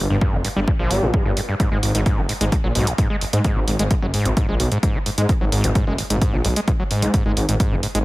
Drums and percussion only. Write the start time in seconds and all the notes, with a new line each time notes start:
0.21 kick
0.45 open hi-hat
0.68 kick
0.91 open hi-hat
1.14 kick
1.37 open hi-hat
1.60 kick, closed hi-hat
1.83 open hi-hat
1.95 closed hi-hat
2.06 kick, closed hi-hat
2.29 open hi-hat
2.41 closed hi-hat
2.52 kick, closed hi-hat
2.75 open hi-hat
2.87 closed hi-hat
2.98 kick, closed hi-hat
3.21 open hi-hat
3.33 closed hi-hat
3.44 kick, closed hi-hat
3.68 open hi-hat
3.79 closed hi-hat
3.91 kick, closed hi-hat
4.14 open hi-hat
4.25 closed hi-hat
4.37 kick, closed hi-hat
4.60 open hi-hat
4.72 closed hi-hat
4.83 kick, closed hi-hat
5.06 open hi-hat
5.18 closed hi-hat
5.29 kick, closed hi-hat
5.52 open hi-hat
5.64 closed hi-hat
5.75 kick, closed hi-hat
5.98 open hi-hat
6.10 closed hi-hat
6.21 kick, closed hi-hat
6.45 open hi-hat
6.56 closed hi-hat
6.68 kick, closed hi-hat
6.91 open hi-hat
7.02 closed hi-hat
7.14 kick, closed hi-hat
7.37 open hi-hat
7.49 closed hi-hat
7.60 kick, closed hi-hat
7.83 open hi-hat
7.95 closed hi-hat